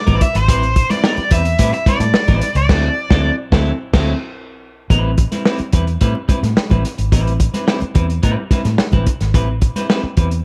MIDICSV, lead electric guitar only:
0, 0, Header, 1, 2, 480
1, 0, Start_track
1, 0, Tempo, 553506
1, 423, Time_signature, 4, 2, 24, 8
1, 9060, End_track
2, 0, Start_track
2, 0, Title_t, "Lead electric guitar"
2, 0, Program_c, 0, 29
2, 0, Note_on_c, 0, 74, 93
2, 189, Note_on_c, 0, 76, 106
2, 200, Note_off_c, 0, 74, 0
2, 310, Note_off_c, 0, 76, 0
2, 311, Note_on_c, 0, 72, 106
2, 785, Note_off_c, 0, 72, 0
2, 788, Note_on_c, 0, 74, 107
2, 1147, Note_on_c, 0, 76, 106
2, 1155, Note_off_c, 0, 74, 0
2, 1497, Note_off_c, 0, 76, 0
2, 1508, Note_on_c, 0, 76, 95
2, 1627, Note_off_c, 0, 76, 0
2, 1635, Note_on_c, 0, 74, 99
2, 2220, Note_off_c, 0, 74, 0
2, 2231, Note_on_c, 0, 74, 90
2, 2907, Note_off_c, 0, 74, 0
2, 9060, End_track
0, 0, End_of_file